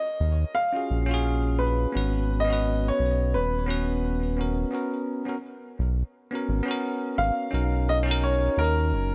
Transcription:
0.00 0.58 D#5 medium
0.20 0.45 D#2 medium
0.55 1.56 F5 loud
0.73 1.04 C#4 medium
0.73 1.05 F4 medium
0.73 1.06 F#4 medium
0.73 1.06 G#4 medium
0.91 1.87 A#1 medium
1.06 1.89 C#4 medium
1.06 1.91 F4 medium
1.11 1.92 F#4 medium
1.11 1.93 G#4 loud
1.59 2.43 B4 medium
1.92 2.91 G#1 loud
1.92 2.43 B3 medium
1.92 2.45 C#4 medium
1.92 2.45 F#4 medium
1.97 2.46 B4 medium
2.40 2.89 D#5 medium
2.45 3.63 B3 loud
2.45 3.65 C#4 medium
2.50 3.66 F#4 medium
2.50 3.67 B4 loud
2.88 3.36 C#5 medium
2.99 3.36 B1 loud
3.34 4.66 D#1 medium
3.34 4.35 B4 medium
3.66 4.34 B3 medium
3.66 4.35 C#4 medium
3.66 4.36 F#4 medium
3.66 4.36 B4 loud
4.37 4.69 B3 medium
4.37 4.70 C#4 medium
4.37 4.71 F#4 medium
4.41 4.71 A#4 medium
4.71 5.23 B3 medium
4.71 5.23 C#4 medium
4.71 5.24 F#4 medium
4.71 5.25 A#4 medium
5.25 5.34 B3 medium
5.25 5.35 C#4 medium
5.25 5.36 F#4 medium
5.29 5.36 A#4 medium
5.79 6.03 B1 medium
6.31 6.62 B3 medium
6.31 6.63 C#4 medium
6.31 6.64 F#4 medium
6.35 6.65 A#4 medium
6.49 6.61 G#1 medium
6.63 7.47 B3 loud
6.63 7.48 C#4 medium
6.68 7.50 F#4 medium
6.68 7.51 A#4 loud
7.18 7.31 G#1 medium
7.18 7.90 F5 loud
7.51 8.49 B1 medium
7.51 8.02 C#4 medium
7.51 8.03 D#4 medium
7.51 8.03 F#4 medium
7.51 8.04 A#4 medium
7.89 7.97 D#5 loud
8.03 9.15 C#4 loud
8.03 9.15 D#4 medium
8.08 9.15 F#4 medium
8.08 9.15 A#4 loud
8.23 8.59 C#5 loud
8.57 8.94 D#2 loud
8.57 9.15 A#4 loud
8.92 9.15 F#1 loud

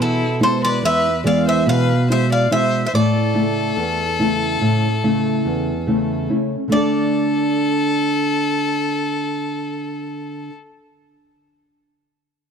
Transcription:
0.00 0.80 B2 medium
0.00 0.23 E3 soft
0.00 0.23 B3 soft
0.00 0.24 E4 medium
0.00 0.39 E4 medium
0.00 0.39 A4 medium
0.40 1.08 G#3 soft
0.40 1.08 B3 soft
0.40 1.08 E4 medium
0.40 0.61 A4 medium
0.40 0.61 C5 medium
0.63 0.82 B4 medium
0.63 0.83 D5 loud
0.83 1.64 E2 medium
0.83 1.22 B4 medium
0.83 1.23 E5 loud
1.24 1.92 E3 medium
1.24 1.91 G#3 medium
1.24 1.92 B3 soft
1.24 1.45 D5 medium
1.24 1.45 F5 medium
1.47 1.66 C5 medium
1.47 1.67 E5 medium
1.66 2.48 B2 medium
1.66 2.07 B4 medium
1.66 2.07 F5 medium
2.09 2.50 G#3 medium
2.09 2.50 E4 medium
2.09 2.29 C5 medium
2.09 2.32 E5 medium
2.32 2.51 D5 medium
2.32 2.51 F5 medium
2.51 2.85 B2 soft
2.51 2.84 G#3 soft
2.51 2.85 E4 medium
2.51 2.85 C5 medium
2.51 2.84 E5 medium
2.87 2.93 C5 medium
2.87 2.93 E5 medium
2.94 3.75 A2 medium
2.94 6.27 A4 medium
2.94 6.27 D5 medium
3.35 3.76 C#3 soft
3.35 4.02 A3 medium
3.35 4.02 E4 medium
3.77 4.59 E2 medium
4.19 4.87 C#3 soft
4.19 4.86 A3 medium
4.19 4.87 E4 medium
4.61 5.43 A2 medium
5.03 5.71 C#3 medium
5.03 5.71 A3 medium
5.03 5.71 E4 medium
5.45 6.27 E2 medium
5.87 6.55 C#3 soft
5.87 6.28 A3 medium
5.87 6.29 E4 medium
6.29 6.63 A3 soft
6.29 6.63 C#4 soft
6.29 6.64 E4 soft
6.68 10.49 D3 medium
6.68 10.50 A3 medium
6.72 10.53 D4 medium
6.72 6.76 F4 medium
6.72 10.53 A4 medium
6.72 10.53 D5 medium
6.76 10.57 A4 medium

